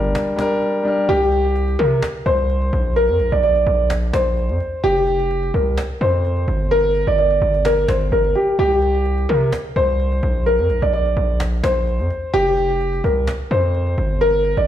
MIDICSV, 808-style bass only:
0, 0, Header, 1, 2, 480
1, 0, Start_track
1, 0, Tempo, 468750
1, 1114, Time_signature, 4, 2, 24, 8
1, 15023, End_track
2, 0, Start_track
2, 0, Title_t, "808-style bass"
2, 0, Program_c, 0, 38
2, 0, Note_on_c, 0, 31, 104
2, 145, Note_off_c, 0, 31, 0
2, 1115, Note_on_c, 0, 36, 109
2, 1806, Note_off_c, 0, 36, 0
2, 1834, Note_on_c, 0, 48, 107
2, 2064, Note_off_c, 0, 48, 0
2, 2314, Note_on_c, 0, 36, 106
2, 2775, Note_off_c, 0, 36, 0
2, 2794, Note_on_c, 0, 34, 106
2, 3161, Note_on_c, 0, 41, 102
2, 3176, Note_off_c, 0, 34, 0
2, 3274, Note_on_c, 0, 34, 98
2, 3289, Note_off_c, 0, 41, 0
2, 3395, Note_off_c, 0, 34, 0
2, 3401, Note_on_c, 0, 34, 99
2, 3740, Note_off_c, 0, 34, 0
2, 3753, Note_on_c, 0, 34, 109
2, 4215, Note_off_c, 0, 34, 0
2, 4233, Note_on_c, 0, 34, 107
2, 4601, Note_on_c, 0, 41, 99
2, 4616, Note_off_c, 0, 34, 0
2, 4708, Note_off_c, 0, 41, 0
2, 4954, Note_on_c, 0, 29, 112
2, 5645, Note_off_c, 0, 29, 0
2, 5674, Note_on_c, 0, 36, 111
2, 5904, Note_off_c, 0, 36, 0
2, 6154, Note_on_c, 0, 41, 101
2, 6615, Note_off_c, 0, 41, 0
2, 6633, Note_on_c, 0, 31, 109
2, 7217, Note_off_c, 0, 31, 0
2, 7241, Note_on_c, 0, 31, 102
2, 7580, Note_off_c, 0, 31, 0
2, 7594, Note_on_c, 0, 31, 111
2, 8055, Note_off_c, 0, 31, 0
2, 8074, Note_on_c, 0, 31, 104
2, 8304, Note_off_c, 0, 31, 0
2, 8314, Note_on_c, 0, 31, 106
2, 8545, Note_off_c, 0, 31, 0
2, 8794, Note_on_c, 0, 36, 111
2, 9485, Note_off_c, 0, 36, 0
2, 9514, Note_on_c, 0, 48, 104
2, 9745, Note_off_c, 0, 48, 0
2, 9995, Note_on_c, 0, 36, 103
2, 10455, Note_off_c, 0, 36, 0
2, 10474, Note_on_c, 0, 34, 106
2, 10841, Note_on_c, 0, 41, 106
2, 10857, Note_off_c, 0, 34, 0
2, 10954, Note_on_c, 0, 34, 98
2, 10969, Note_off_c, 0, 41, 0
2, 11075, Note_off_c, 0, 34, 0
2, 11082, Note_on_c, 0, 34, 101
2, 11420, Note_off_c, 0, 34, 0
2, 11434, Note_on_c, 0, 34, 109
2, 11895, Note_off_c, 0, 34, 0
2, 11914, Note_on_c, 0, 34, 109
2, 12281, Note_on_c, 0, 41, 103
2, 12297, Note_off_c, 0, 34, 0
2, 12389, Note_off_c, 0, 41, 0
2, 12634, Note_on_c, 0, 29, 113
2, 13325, Note_off_c, 0, 29, 0
2, 13354, Note_on_c, 0, 36, 108
2, 13584, Note_off_c, 0, 36, 0
2, 13833, Note_on_c, 0, 41, 105
2, 14295, Note_off_c, 0, 41, 0
2, 14314, Note_on_c, 0, 31, 104
2, 14897, Note_off_c, 0, 31, 0
2, 14921, Note_on_c, 0, 31, 101
2, 15023, Note_off_c, 0, 31, 0
2, 15023, End_track
0, 0, End_of_file